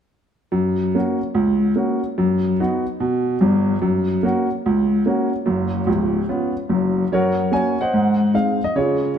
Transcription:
upright piano
0.52 F#2
0.95 A#3 C#4 F#4
1.34 C#2
1.76 A#3 C#4 F#4
2.18 F#2
2.60 B3 D#4 F#4
3.00 B2
3.41 G1 G2
3.82 F#2
4.23 A#3 C#4 F#4
4.66 C#2
5.06 A#3 C#4 F#4
5.46 F#1 F#2
5.87 C#1 C#2
6.29 B3 C#4 F4
6.69 F#1 F#2
7.12 F#2 F#4 A#4 C#5
7.51 A#3 C#4 F#4 C#5 G#5
7.81 C5 D#5 F#5
7.94 G#2
8.34 G#3 C4 D#4 F5
8.64 D#5
8.76 C#3 F4 G#4 C#5

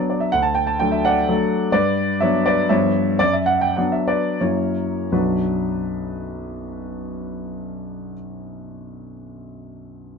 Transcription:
grand piano
Already playing: F#3 B3 D4
0.10 D5
0.20 E5
0.32 D2 F#5
0.43 A5
0.55 G5
0.67 A5
0.80 F#3 A3 D4 G5
0.92 E5
1.05 D5 F#5
1.28 F#3 A3 D4
1.72 G2 B4 D5
2.20 F#3 B3 D4 C#5 E5
2.46 B4 D5
2.69 G2 F3 B3 D4 C#5 E5
3.19 F#2 D5
3.33 E5
3.46 F#5
3.61 G5
3.77 F#3 B3 D4 F#5
3.92 E5
4.08 B4 D5
4.40 F#2 F#3 A#3 E4 A#4 C#5
5.12 B1 F#2 F#3 B3 D4 F#4 B4

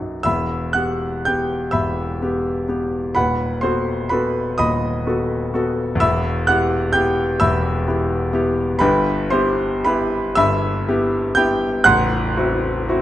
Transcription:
grand piano
Already playing: B1 D#4 F#5
0.00 F#2
0.23 E1 E2 E5 B5 E6
0.73 B3 G4 F#5 F#6
1.25 B3 G4 G5 G6
1.71 E1 E2 E5 B5 E6
2.22 B3 G4
2.69 B3 G4
3.15 D#1 D#2 B4 F#5 B5
3.61 B3 F#4 A4 C5 C6
4.09 B3 F#4 A4 B4 B5
4.58 D#1 D#2 D#5 B5 D#6
5.07 B3 F#4 A4
5.54 B3 F#4 A4
5.95 E2
6.00 E1 E5 B5 E6
6.47 B3 E4 G4 F#5 F#6
6.93 B3 E4 G4 G5 G6
7.40 E1 E2 E5 B5 E6
7.88 B3 E4 G4
8.33 B3 E4 G4
8.79 G1 G2 B4 G5 B5
9.30 B3 E4 G4 C5 C6
9.85 B3 E4 G4 B4 B5
10.35 G1 G2 E5 B5 E6
10.88 B3 E4 G4
11.35 B3 E4 G4 G5 G6
11.84 A0 A1 F#5 C6 F#6
12.37 C4 E4 F#4
12.89 C4 E4 F#4

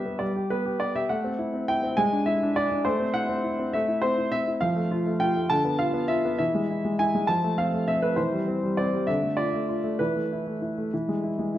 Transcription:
grand piano
Already playing: G3 B3 G4 B4 E5
0.06 B3
0.19 G3 D5
0.36 G4
0.50 B3 B4
0.65 G4
0.80 B3 D5
0.95 G4 E5
1.09 A3 F#5
1.24 C4
1.39 E4
1.54 C4
1.68 E4 G5
1.83 C4
1.97 G#3 G#5
2.13 D4
2.26 E4 E5
2.43 D4
2.56 E4 D5
2.71 D4
2.85 A3 C5
3.00 C4
3.14 E4 F#5
3.29 C4
3.44 E4
3.59 C4
3.73 A3 E5
3.88 E4
4.02 C4 C5
4.18 E4
4.32 C4 E5
4.48 E4
4.61 F3 F5
4.76 A3
4.91 F4
5.07 A3
5.20 F4 G5
5.36 A3
5.50 D3 A5
5.65 B3
5.79 F4 F5
5.94 B3
6.08 F4 E5
6.25 B3
6.39 E3 E5
6.54 G#3
6.70 E4
6.85 G#3
6.99 E4 G#5
7.15 G#3
7.27 F3 A5
7.44 A3
7.58 C4 F5
7.74 A3
7.88 C4 E5
8.02 A3 B4
8.16 E3 C5
8.32 G3
8.48 C4
8.63 G3
8.77 C4 D5
8.93 G3
9.07 D3 E5
9.22 A3
9.37 F4 D5
9.54 A3
9.68 F4
9.84 A3
9.99 E3 B4
10.16 A3
10.32 E4
10.47 A3
10.62 E4
10.78 A3
10.94 E3
11.09 G#3
11.24 E4
11.39 G#3
11.54 E4

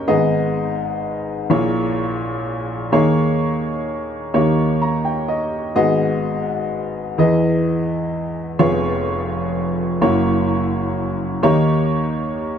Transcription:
upright piano
Already playing: D#2 D#3 C#4 G4 A#4 C#5 D#5 G5
0.08 G#1 G#2 B3 D#4 G#4 D#5
1.50 A#1 A#2 A#3 E4 G#4 C#5
2.92 D#2 D#3 A#3 D#4 G#4 C#5
4.34 D#2 D#3 A#3 D#4 G4 C#5
4.82 A#5
5.05 G5
5.28 D#5
5.75 G#1 G#2 B3 F#4 G#4 D#5
7.18 E2 E3 B3 E4 G#4 D#5
8.59 F1 F2 B3 F4 G#4 C#5
10.01 F#1 F#2 A#3 E4 F#4 C#5
11.42 D#2 D#3 A#3 D#4 G4 C#5

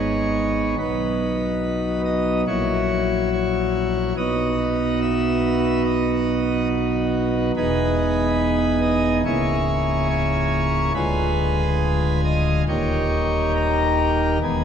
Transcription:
pipe organ
Already playing: G#1 G#2 G#3 B3 D#4 C#5
0.79 B1 B2 F#3 B3 D#4 B4
2.05 D#5
2.47 A#1 A#2 F#3 E4 F#4 C#5
3.33 C#5
4.17 B1 B2 B3 D#4 F#4 D#5
5.01 E5
5.85 D#5
7.56 E1 E2 B3 D#4 G#4 B4
8.82 D#5
9.25 C#1 C#2 A#3 E4 G#4 C#5
10.09 C#5
10.94 D1 D2 G#3 F4 G#4 B4
12.25 D#5
12.68 D#1 D#2 A#3 D#4 G4 C#5
13.55 A#4
14.42 E1 E2 G#3 B3 G#4

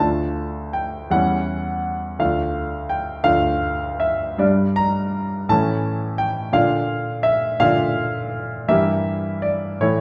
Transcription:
grand piano
0.00 D2 A3 D4 F4 A5
0.73 G5
1.10 E2 G3 C#4 E4 F#5
2.19 D2 A3 D4 F4 F5
2.89 G5
3.24 D2 A3 D4 F4 F5
4.00 E5
4.38 G2 G3 D4 D5
4.76 A#5
5.49 A2 E3 A3 C#4 A5
6.18 G5
6.53 A#2 D3 D4 F4 F5
7.23 E5
7.60 A#2 D3 D4 F4 F5
8.68 G2 E3 A#3 G4 E5
9.42 D5
9.81 A2 E3 A3 E4 C#5

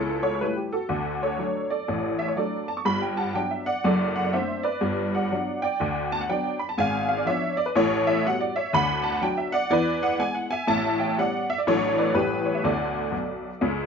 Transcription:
honky-tonk piano
Already playing: C#2 C#3 E4 A4
0.23 A4 C#5
0.41 G3 A3 E4 B4
0.56 G4
0.73 F#4 A4
0.89 D2 D3
1.23 A4 C#5
1.38 F#3 A3 D4
1.70 A4 D5
1.88 A1 A2
2.19 E5
2.28 C#5
2.36 F#3 A3 D4 A4 D5
2.68 A5
2.77 C#6
2.85 G1 G2 B5
3.02 G5
3.17 F#5 A5
3.34 F#3 B3 D4 G5
3.51 E5
3.66 D5 F#5
3.84 F#1 F#2 A4 D5
4.16 F#5
4.25 D5
4.32 A3 C4 D4 C5 E5
4.63 B4 D5
4.81 G1 G2
5.15 D5 F#5
5.31 F#3 B3 D4
5.62 D5 G5
5.80 D2 D3
6.12 A5
6.21 F#5
6.29 F#3 B3 D4 D5 G5
6.59 B5
6.69 A5
6.78 G#1 G#2 F5 G#5
7.09 F5
7.17 D5
7.26 F3 B3 D4 C#5 E5
7.57 D5
7.66 B4
7.76 A1 A2 A4 C#5
8.07 C#5 E5
8.26 G3 B3 F#4 F#5
8.41 D5
8.56 C#5 E5
8.73 D2 D3 F#5 B5
9.03 A5
9.12 F#5
9.21 F#3 D4 F#4 G5
9.37 E5
9.52 D5 F#5
9.70 E2 E3 B4 D5
10.03 D5 F#5
10.19 G#3 B3 E4 G#5
10.35 F#5
10.51 E5 G#5
10.67 A1 A2 E5 A5
11.00 E5 G5
11.18 G3 B3 C#4 D5 F#5
11.50 E5
11.58 D5
11.67 A1 A2 F#3 A3 D4 A4 C#5
11.98 B4 D5
12.14 A1 A2 G3 A3 E4 G4 B4
12.45 C#5
12.55 E5
12.64 D2 D3 A4 D5
13.12 B1 B2
13.61 C#2 C#3

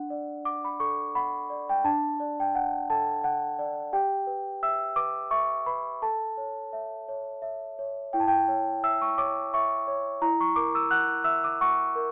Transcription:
celesta
Already playing: D4 F#5
0.10 D5
0.45 F#5 D6
0.65 B5
0.80 A4 C#6
1.15 F#5 B5
1.50 D5
1.69 G5
1.84 D4 A5
2.20 D5
2.40 G5
2.55 F#5
2.90 A4 A5
3.24 F#5
3.59 D5
3.93 G4 G5
4.27 B4
4.63 E5 E6
4.96 B4 D6
5.31 E5 C#6
5.66 B4 B5
6.02 A4 A5
6.37 C#5
6.73 E5
7.08 C#5
7.42 E5
7.79 C#5
8.13 E4 G5
8.20 A5
8.28 G5
8.48 C#5
8.83 E5 E6
9.02 C#6
9.18 C#5 D6
9.54 E5 C#6
9.88 C#5
10.22 E4 A#5
10.41 C#6
10.56 A#4 D6
10.75 E6
10.91 F#5 F#6
11.24 E5 E6
11.44 D6
11.61 F#5 C#6
11.96 A#4

